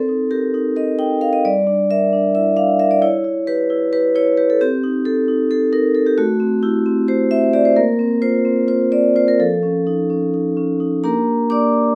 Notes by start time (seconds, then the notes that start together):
Already playing: C4 A4
0.09 D#4
0.31 G4 A#4
0.54 D#4
0.76 A#4 D#5
0.99 D#4 G5
1.21 A#4 F5
1.33 D#5
1.45 G3 D5
1.67 D4
1.90 A#4 E5
2.13 D4
2.35 E4 E5
2.57 D4 F5
2.79 A#4 E5
2.91 D5
3.02 E4 C#5
3.24 E4
3.47 G4 B4
3.70 E4
3.93 G4 B4
4.15 E4 C#5
4.37 G4 B4
4.50 A4
4.61 C4 G4
4.84 D#4
5.05 A4
5.28 D#4
5.51 A4
5.73 D#4 A#4
5.95 A4
6.07 G4
6.18 A3 F#4
6.40 C4
6.63 E4 G4
6.86 C4
7.08 G4 C5
7.31 C4 E5
7.53 G4 D5
7.65 C5
7.76 A#3 A#4
7.99 C4
8.22 F4 C5
8.45 C4
8.68 F4 C5
8.92 C4 D5
9.16 F4 C5
9.28 A#4
9.40 F3 A4
9.63 C#4
9.87 D#4
10.10 C#4
10.34 D#4
10.57 C#4
10.80 D#4
11.04 A#3 D4 G4 A#4 A#5
11.50 A#3 D4 G4 D5 D6